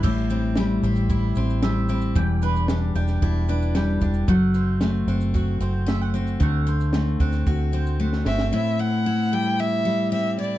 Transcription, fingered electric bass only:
\new Staff \with { instrumentName = "Fingered electric bass" } { \clef bass \time 4/4 \key a \dorian \tempo 4 = 113 a,,4. a,,4 a,,4. | e,,4. e,,8 e,,4. e,,8 | fis,,4. fis,,4 fis,,4. | d,4. d,8 d,4. g,,8 |
r1 | }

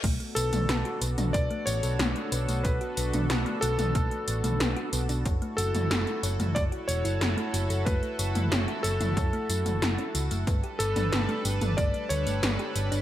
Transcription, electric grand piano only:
\new Staff \with { instrumentName = "Electric grand piano" } { \time 4/4 \key b \minor \tempo 4 = 92 r8 a'4 r8 d''8 cis''4. | b'4 r8 a'2 r8 | r8 a'4 r8 d''8 cis''4. | b'4 r8 a'2 r8 |
r8 a'4 r8 d''8 cis''4. | }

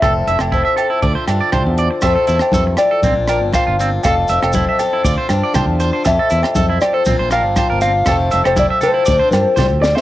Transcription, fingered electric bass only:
\new Staff \with { instrumentName = "Fingered electric bass" } { \clef bass \time 4/4 \key f \major \tempo 4 = 119 f,,8 f,,16 f,,8 r8. d,16 r16 g,16 r16 c,16 e,8 r16 | f,16 r16 e,16 r16 f,8 r8 bes,,16 bes,,8 g,,16 r16 g,,8. | f,,8 f,,16 f,,8 r8. d,16 r16 g,16 r16 c,16 e,8 r16 | f,16 r16 e,16 r16 f,8 r8 bes,,16 bes,,8 g,,16 r16 g,,8. |
f,,8 f,,16 f,,8 r8. d,16 r16 g,16 r16 c,16 d,8 r16 | }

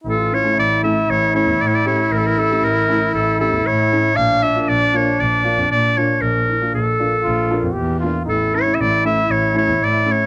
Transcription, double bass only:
\new Staff \with { instrumentName = "Double bass" } { \clef bass \time 4/4 \tempo 4 = 117 a,,8 r8 a,,4 a,,8. e,16 a,4 | a,,8 r8 a,,4 a,,8. e,16 a,4 | bes,,8 r8 bes,,4 bes,,8. f,16 bes,4 | bes,,8 r8 bes,,4 bes,,8. f,16 e,4 |
a,,8 r8 a,,4 a,,8. e,16 a,4 | }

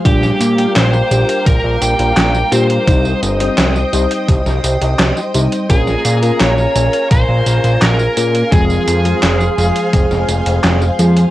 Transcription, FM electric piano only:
\new Staff \with { instrumentName = "FM electric piano" } { \time 4/4 \key bes \dorian \tempo 4 = 85 <g bes d' f' g'>8. <g bes d' f' g'>8. <g bes d' f' g'>2 <g bes d' f' g'>8 | <g c' ees' g' c''>8. <g c' ees' g' c''>8. <g c' ees' g' c''>2 <g c' ees' g' c''>8 | <bes des' f' aes' bes'>8. <bes des' f' aes' bes'>8. <bes des' f' aes' bes'>2 <bes des' f' aes' bes'>8 | <f aes c' f' aes'>8. <f aes c' f' aes'>8. <f aes c' f' aes'>2 <f aes c' f' aes'>8 | }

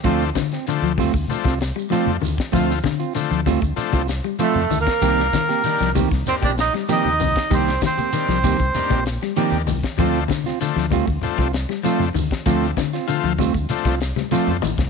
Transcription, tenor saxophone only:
\new Staff \with { instrumentName = "Tenor saxophone" } { \time 4/4 \key d \phrygian \tempo 4 = 97 r1 | r2. \tuplet 3/2 { a4 bes8~ } | bes4. r8 c'16 d'16 ees'8 ees'4 | c'8 c'2 r4. |
r1 | r1 | }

